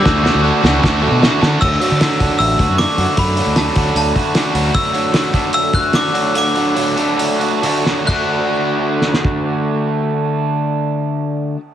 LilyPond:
<<
  \new Staff \with { instrumentName = "Glockenspiel" } { \time 4/4 \key d \major \tempo 4 = 151 d'''2. r4 | e'''2 e'''4 d'''4 | b''4 a''4 a''4. r8 | e'''2 e'''8 fis'''8 d'''4 |
d'''2. r4 | fis'''1~ | fis'''1 | }
  \new Staff \with { instrumentName = "Overdriven electric guitar" } { \time 4/4 \key d \major <d a d' fis'>8 <d a d' fis'>8 <d a d' fis'>8 <d a d' fis'>8 <d a d' fis'>8 <d a d' fis'>8 <d a d' fis'>8 <d a d' fis'>8 | <d a d' fis'>8 <a d' fis'>8 <d a d' fis'>8 <a d' fis'>4. <d a d' fis'>8 <a d' fis'>8 | <d a d' fis'>8 <a d' fis'>8 <d a d' fis'>8 <a d' fis'>4. <d a d' fis'>8 <a d' fis'>8 | <d a d' fis'>8 <a d' fis'>8 <d a d' fis'>8 <a d' fis'>4. <d a d' fis'>8 <a d' fis'>8 |
<d a d' fis'>8 <a d' fis'>8 <d a d' fis'>8 <a d' fis'>4. <d a d' fis'>8 <a d' fis'>8 | <d a d' fis'>1~ | <d a d' fis'>1 | }
  \new Staff \with { instrumentName = "Trumpet" } { \time 4/4 \key d \major d'2. r4 | r1 | r1 | r1 |
r1 | r1 | r1 | }
  \new Staff \with { instrumentName = "Overdriven electric guitar" } { \time 4/4 \key d \major <d a d' fis'>8 <d a d' fis'>8 <d a d' fis'>8 <d a d' fis'>8 <d a d' fis'>8 <d a d' fis'>8 <d a d' fis'>8 <d a d' fis'>8 | d8 fis8 fis8 d'8 a8 fis'8 d'8 fis8 | d8 fis8 fis8 d'8 a8 fis'8 d'8 fis8 | d8 fis8 fis8 d'8 a8 fis'8 d'8 fis8 |
d8 fis8 fis8 d'8 a8 fis'8 d'8 fis8 | <d a d' fis'>1~ | <d a d' fis'>1 | }
  \new Staff \with { instrumentName = "Fingered electric bass" } { \clef bass \time 4/4 \key d \major d,8. d,8 r16 cis,8 d,8. b,8 r16 d8 | d,8 r16 d8 r16 cis,16 r16 a,,8 d,16 fis,8 r16 fis,16 r16 | fis,8. d,8. d,8 d,8 r4 d,8 | r1 |
r1 | r1 | r1 | }
  \new DrumStaff \with { instrumentName = "Drums" } \drummode { \time 4/4 <bd sn>8 sn8 r8 sn8 <bd sn>4 sn8 sn8 | <cymc bd>8 hho8 <hho sn>8 <hho bd>8 hho8 <hho bd>8 <hho sn>8 hho8 | <hho bd>8 hho8 <hho sn>8 <hho bd>8 hho8 <hho bd>8 <hho sn>8 hho8 | <hho bd>8 hho8 <hho sn>8 <hho bd>8 hho8 <hho bd>8 <hho sn>8 hho8 |
hho8 hho8 hho8 hho8 hho8 hho8 hho8 sn8 | <bd cymr>4 r4 sn16 sn16 bd8 r4 | r4 r4 r4 r4 | }
>>